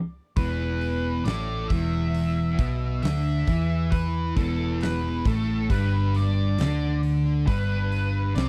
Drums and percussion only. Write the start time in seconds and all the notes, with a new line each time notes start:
0.37 kick, open hi-hat
0.81 open hi-hat
1.25 snare, open hi-hat
1.70 kick, open hi-hat
2.15 open hi-hat
2.58 kick, open hi-hat
3.03 snare, open hi-hat
3.47 kick, open hi-hat
3.92 kick, open hi-hat
4.37 kick, open hi-hat
4.81 snare, open hi-hat
5.25 kick, open hi-hat
5.70 kick, open hi-hat
6.14 snare, open hi-hat
6.58 snare, open hi-hat
7.03 open hi-hat
7.48 kick, open hi-hat
7.92 open hi-hat
8.36 snare, open hi-hat